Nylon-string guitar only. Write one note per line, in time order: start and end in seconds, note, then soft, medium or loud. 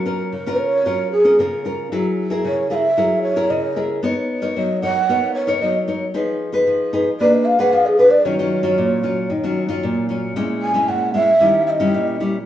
0.00 0.30 F#3 medium
0.06 0.31 C#4 medium
0.06 0.31 F4 soft
0.06 0.31 A#4 medium
0.32 0.83 C#3 medium
0.46 0.82 C#4 medium
0.46 0.82 F4 medium
0.46 0.82 A#4 medium
0.86 1.36 F#3 medium
0.86 1.11 C#4 medium
0.86 1.11 F4 medium
0.86 1.11 A#4 medium
1.25 1.34 C#4 medium
1.25 1.34 F4 medium
1.25 1.34 A#4 medium
1.39 1.89 C#3 medium
1.39 1.61 C#4 medium
1.39 1.62 F4 medium
1.39 1.62 A#4 medium
1.65 1.87 C#4 soft
1.65 1.88 F4 soft
1.65 1.88 A#4 soft
1.92 2.42 F#3 medium
1.92 2.27 E4 medium
1.92 2.28 G#4 medium
1.92 2.28 A#4 medium
2.30 2.66 E4 medium
2.30 2.67 G#4 medium
2.30 2.67 A#4 medium
2.45 2.95 C#3 medium
2.70 2.86 E4 medium
2.70 2.86 G#4 medium
2.70 2.87 A#4 medium
2.97 3.48 F#3 medium
2.97 3.33 E4 medium
2.97 3.33 G#4 medium
2.97 3.33 A#4 medium
3.36 3.72 E4 medium
3.36 3.72 G#4 medium
3.36 3.72 A#4 medium
3.50 4.00 C#3 medium
3.76 3.99 E4 soft
3.76 3.99 G#4 soft
3.76 3.99 A#4 medium
4.03 4.53 B3 medium
4.03 4.38 D#4 medium
4.03 4.39 A#4 medium
4.03 4.39 C#5 medium
4.42 4.78 D#4 medium
4.42 4.78 A#4 medium
4.42 4.78 C#5 medium
4.56 5.06 F#3 medium
4.82 4.98 D#4 medium
4.82 4.98 A#4 medium
4.82 4.98 C#5 medium
5.09 5.59 B3 medium
5.09 5.44 D#4 medium
5.09 5.45 A#4 medium
5.09 5.45 C#5 medium
5.47 5.83 D#4 medium
5.47 5.83 A#4 medium
5.47 5.84 C#5 medium
5.62 6.12 F#3 medium
5.87 6.03 D#4 soft
5.87 6.03 A#4 soft
5.87 6.04 C#5 medium
6.14 6.64 F3 medium
6.14 6.50 D#4 medium
6.14 6.50 G#4 medium
6.14 6.50 B4 medium
6.52 6.88 D#4 medium
6.52 6.89 G#4 medium
6.52 6.89 B4 medium
6.67 7.17 F3 medium
6.93 7.09 D#4 medium
6.93 7.09 G#4 medium
6.93 7.09 B4 medium
7.20 7.70 A#3 medium
7.20 7.55 D4 medium
7.20 7.56 G#4 medium
7.20 7.56 B4 medium
7.59 7.94 D4 medium
7.59 7.95 G#4 medium
7.59 7.95 B4 medium
7.73 8.23 F3 medium
7.99 8.21 D4 soft
7.99 8.21 G#4 soft
7.99 8.21 B4 medium
8.25 8.75 D#3 medium
8.25 8.34 F#3 medium
8.25 8.34 C#4 medium
8.25 8.34 F4 medium
8.39 8.61 F#3 medium
8.39 8.61 C#4 medium
8.39 8.61 F4 medium
8.63 8.99 F#3 medium
8.63 8.99 C#4 medium
8.63 9.00 F4 medium
8.78 9.28 A#2 medium
9.03 9.28 F#3 soft
9.03 9.29 C#4 medium
9.03 9.29 F4 medium
9.30 9.80 D#3 medium
9.44 9.66 F#3 medium
9.44 9.66 C#4 medium
9.44 9.66 F4 medium
9.68 10.05 F#3 medium
9.68 10.05 C#4 medium
9.68 10.05 F4 medium
9.83 10.33 A#2 medium
10.09 10.33 F#3 soft
10.09 10.34 C#4 medium
10.09 10.34 F4 medium
10.36 10.86 A#2 medium
10.36 10.71 G#3 medium
10.36 10.71 C#4 medium
10.36 10.72 E4 medium
10.74 11.10 G#3 medium
10.74 11.10 C#4 medium
10.74 11.11 E4 medium
10.88 11.38 A#2 medium
11.14 11.30 G#3 medium
11.14 11.30 C#4 medium
11.14 11.30 E4 medium
11.40 11.91 D#3 medium
11.40 11.76 G3 medium
11.40 11.76 C#4 medium
11.40 11.76 E4 medium
11.80 12.15 G3 medium
11.80 12.16 C#4 medium
11.80 12.16 E4 medium
11.94 12.44 A#2 medium
12.20 12.36 G3 soft
12.20 12.36 C#4 medium
12.20 12.36 E4 medium